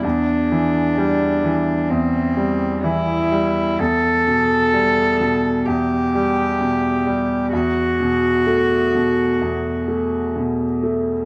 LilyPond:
<<
  \new Staff \with { instrumentName = "Cello" } { \time 4/4 \key e \minor \tempo 4 = 64 d'2 c'4 e'4 | a'2 g'2 | fis'2. r4 | }
  \new Staff \with { instrumentName = "Upright piano" } { \clef bass \time 4/4 \key e \minor e,8 e8 g8 e8 e,8 g8 e8 g8 | e,8 b,8 g8 b,8 e,8 g8 b,8 g8 | e,8 b,8 a8 b,8 e,8 a8 b,8 a8 | }
>>